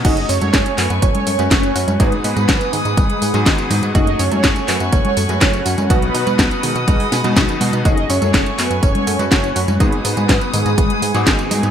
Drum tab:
CC |x---------------|----------------|----------------|----------------|
HH |xxoxxxoxxxoxxxox|xxoxxxoxxxoxxxox|xxoxxxoxxxoxxxox|xxoxxxoxxooxxxox|
TB |x-xxxxxxx-xxxxxx|x-xxxxxxx-xxxxxx|x-xxxxxxx-xxxxxx|x-xxxxxxx-xxxxxx|
CP |----x-x-----x---|----x-------x---|----x-x-----x---|----x-------x---|
SD |----o-------o---|----o-------o---|----o-------o---|----o-----o-o---|
CG |---o-----o-----o|---o----o-----o-|---o-----o-----o|---o----o--o--o-|
BD |o---o---o---o---|o---o---o---o---|o---o---o---o---|o---o---o---o---|

CC |----------------|----------------|
HH |xxoxxxoxxxoxxxox|xxoxxxoxxxoxxxox|
TB |x-xxxxxxx-xxxxxx|x-xxxxxxx-xxxxxx|
CP |----x-x-----x---|----x-------x---|
SD |----o-------o---|----o-------o---|
CG |---o-----o-----o|---o----o-----o-|
BD |o---o---o---o---|o---o---o---o---|